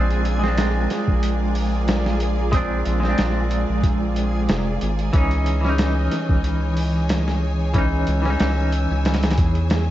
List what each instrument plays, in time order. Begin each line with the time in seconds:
Already playing: analog synth bass A#1, clean electric guitar G#3 C4 D4, string section F4 A#4 D5 G#5, synth texture G#4
0.10 closed hi-hat
0.25 closed hi-hat
0.39 clean electric guitar G#3
0.44 clean electric guitar C4, snare
0.48 clean electric guitar D4
0.58 snare, closed hi-hat
0.90 snare, closed hi-hat
1.08 analog synth bass A#1, kick
1.23 closed hi-hat
1.55 open hi-hat
1.88 snare, closed hi-hat
2.06 snare
2.20 closed hi-hat
2.52 clean electric guitar G#3 C4, kick, closed hi-hat
2.57 clean electric guitar D4
2.85 analog synth bass A#1, closed hi-hat
3.00 clean electric guitar G#3, snare
3.04 clean electric guitar C4
3.09 clean electric guitar D4
3.18 analog synth bass A#1, snare, closed hi-hat
3.51 closed hi-hat
3.69 analog synth bass A#1
3.83 kick, closed hi-hat
4.16 closed hi-hat
4.49 analog synth bass F1, snare, closed hi-hat
4.81 analog synth bass G#1, closed hi-hat
4.99 closed hi-hat
5.13 analog synth bass C#2, clean electric guitar E3 C#4, string section E3 C#5 D#5 G#5, kick, closed hi-hat
5.17 clean electric guitar D#4
5.31 closed hi-hat
5.46 closed hi-hat
5.61 clean electric guitar E3, snare
5.65 clean electric guitar C#4
5.69 clean electric guitar D#4
5.78 snare, closed hi-hat
6.12 snare, closed hi-hat
6.29 analog synth bass C#2, kick
6.44 closed hi-hat
6.77 open hi-hat
7.09 snare, closed hi-hat
7.28 snare
7.74 clean electric guitar E3 C#4, string section E6, kick, closed hi-hat
7.78 clean electric guitar D#4
8.07 analog synth bass C#2, closed hi-hat
8.22 clean electric guitar E3 C#4, snare
8.30 clean electric guitar D#4
8.40 analog synth bass C#2, snare, closed hi-hat
8.72 closed hi-hat
8.91 analog synth bass C#2
9.05 snare, closed hi-hat
9.14 snare, closed hi-hat
9.23 snare, closed hi-hat
9.31 snare, closed hi-hat
9.38 analog synth bass E2, kick, closed hi-hat
9.55 closed hi-hat
9.70 snare, closed hi-hat